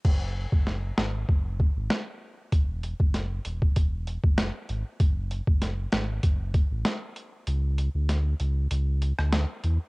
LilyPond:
<<
  \new Staff \with { instrumentName = "Sub bass" } { \clef bass \time 4/4 \key e \mixolydian \tempo 4 = 97 fis,,8. fis,,8. gis,,8 fis,,8. gis,,16 r4 | e,,8. fis,,8. e,,8 e,,8. fis,,8 r16 gis,,16 r16 | fis,,8. fis,,8. gis,,8 fis,,8. a,,16 r4 | cis,8. d,8. cis,8 cis,8. d,8 r16 e,16 r16 | }
  \new DrumStaff \with { instrumentName = "Drums" } \drummode { \time 4/4 <cymc bd>8. bd16 sn8 sn8 bd8 bd8 sn4 | <hh bd>8 hh16 bd16 <hh sn>8 hh16 bd16 <hh bd>8 hh16 bd16 <hh sn>8 hh8 | <hh bd>8 hh16 bd16 <hh sn>8 <hh sn>8 <hh bd>8 <hh bd>8 <hh sn>8 hh8 | hh8 hh8 <hh sn>8 hh8 hh8 hh16 ss16 <hh sn>8 hh8 | }
>>